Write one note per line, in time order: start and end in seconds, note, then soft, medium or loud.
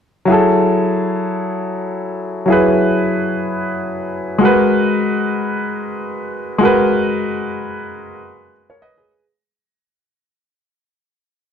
0.25 2.43 F#3 medium
0.25 2.44 E4 medium
0.30 2.45 G#4 medium
0.30 2.46 A4 medium
2.46 4.36 F#3 medium
2.46 4.37 E4 medium
2.50 4.38 G#4 medium
2.50 4.39 B4 medium
4.38 6.56 G#3 medium
4.38 6.57 F#4 medium
4.43 6.58 A#4 medium
4.43 6.59 B4 medium
6.58 8.76 G#3 medium
6.58 8.77 F#4 medium
6.63 8.51 A#4 medium
6.63 8.52 B4 medium
8.70 8.81 A#4 medium
8.70 8.81 C#5 medium
8.82 8.96 B4 medium
8.82 8.96 D#5 medium
8.97 9.23 G#4 medium
8.97 9.23 B4 medium